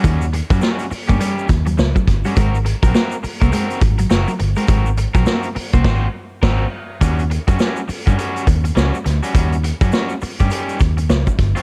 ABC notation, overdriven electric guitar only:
X:1
M:4/4
L:1/16
Q:"Swing 16ths" 1/4=103
K:Ab
V:1 name="Overdriven electric guitar"
[G,D^F] z2 [G,DF] [G,DF] z2 [G,DG] [G,DG]2 z4 z [G,DF] | [C_GB] z2 [CGB] [CGB] z2 [CGB] [CGB]2 z2 [CGB] z2 [CGB] | [C_GB] z2 [CGB] [CGB] z2 [CGc] [CGc]2 z2 [CGB]2 z2 | [G,D^F] z2 [G,DF] [G,DF] z2 [G,DF] [G,DF]2 z2 [G,DF] z2 [G,DF] |
[G,D^F] z2 [G,DF] [G,DF] z2 [G,DG] [G,DG]2 z4 z [G,DF] |]